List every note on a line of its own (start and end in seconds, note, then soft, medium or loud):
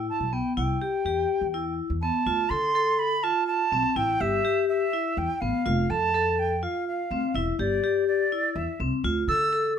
0.00 0.21 E4 medium
0.09 0.35 A5 medium
0.20 0.39 B1 medium
0.33 0.51 B3 medium
0.33 0.56 G5 medium
0.56 0.76 C2 medium
0.56 0.75 E4 medium
0.56 1.74 G5 medium
0.82 1.00 G4 medium
1.05 1.24 E2 medium
1.05 1.42 G4 medium
1.41 1.79 E2 medium
1.54 1.91 E4 medium
1.90 2.09 E2 medium
2.01 2.21 B3 medium
2.01 2.51 A5 medium
2.26 2.45 D2 medium
2.26 2.45 F4 medium
2.49 3.26 D3 medium
2.49 2.69 A4 medium
2.49 3.00 C6 loud
2.75 3.12 A4 medium
2.99 3.25 B5 medium
3.23 3.60 F4 medium
3.23 3.46 A5 medium
3.47 3.98 A5 medium
3.72 3.81 B1 medium
3.72 3.91 C4 medium
3.96 4.15 A1 medium
3.96 4.15 E4 medium
3.96 4.22 G5 medium
4.20 4.39 G1 medium
4.20 4.39 G4 medium
4.20 4.68 E5 medium
4.45 4.81 G4 medium
4.68 5.19 E5 medium
4.93 5.30 E4 medium
5.17 5.27 E2 medium
5.17 5.42 G5 medium
5.40 5.51 A1 medium
5.40 5.60 B3 medium
5.40 5.92 F5 medium
5.66 5.85 F1 loud
5.66 5.84 F4 medium
5.90 6.65 F2 medium
5.90 6.08 A4 medium
5.90 6.40 A5 medium
6.14 6.51 A4 medium
6.39 6.65 G5 medium
6.63 6.99 F4 medium
6.63 6.87 F5 medium
6.88 7.36 F5 medium
7.11 7.20 D2 medium
7.11 7.29 C4 medium
7.34 7.53 E1 medium
7.34 7.54 E4 medium
7.34 7.59 E5 medium
7.59 7.78 G1 medium
7.59 7.78 G4 medium
7.59 8.04 D5 medium
7.84 8.20 G4 medium
8.08 8.57 D5 medium
8.32 8.69 E4 medium
8.55 8.65 E2 medium
8.55 8.80 E5 medium
8.80 8.89 C2 medium
8.80 8.99 C4 medium
9.04 9.23 D2 medium
9.04 9.23 F4 medium
9.28 9.79 D3 medium
9.28 9.47 A4 medium
9.28 9.73 E6 loud
9.53 9.79 A4 medium